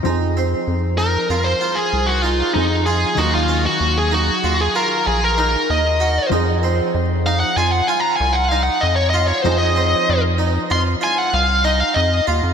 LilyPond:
<<
  \new Staff \with { instrumentName = "Lead electric guitar" } { \time 5/4 \key f \phrygian \tempo 4 = 96 r4. bes'8. c''8 aes'8 ges'16 f'8 ees'8 aes'8 | ges'16 f'8 ges'8 aes'16 ges'8. aes'16 bes'8 aes'16 bes'16 bes'8 ees''4 | r4. f''16 ges''16 aes''16 ges''16 aes''16 bes''16 aes''16 ges''16 f''16 ges''16 ees''16 des''16 ees''16 des''16 | c''16 ees''4 r8. c'''8 aes''16 ges''16 f''8 ees''16 f''16 ees''8 r8 | }
  \new Staff \with { instrumentName = "Harpsichord" } { \time 5/4 \key f \phrygian ees'8 c'4 ees'8 f'8 f'4 ees'4 f'8 | ees'8 des'4 ees'8 f'8 f'4 ees'4 ges'8 | ees'8 c'4 ees'8 f'8 f'4 ees'4 f'8 | ees'8 c'4 ees'8 f'8 f'4 ees'4 f'8 | }
  \new Staff \with { instrumentName = "Hollow-body jazz guitar" } { \time 5/4 \key f \phrygian <f c' ees' aes'>1 <f c' ees' aes'>4 | <ees ges ees' bes'>1~ <ees ges ees' bes'>4 | <f c' ees' aes'>1~ <f c' ees' aes'>4 | <f c' ees' aes'>1~ <f c' ees' aes'>4 | }
  \new Staff \with { instrumentName = "Analog synth bass" } { \clef bass \time 5/4 \key f \phrygian f,4 f,4 f,8 r8 c,4 f,4 | ees,4 ees,4 ees,8 r8 bes,,4 ees,4 | f,4 f,4 f,8 r8 c,4 f,4 | f,4 f,4 f,8 r8 c,4 f,8 ees,16 f,16 | }
>>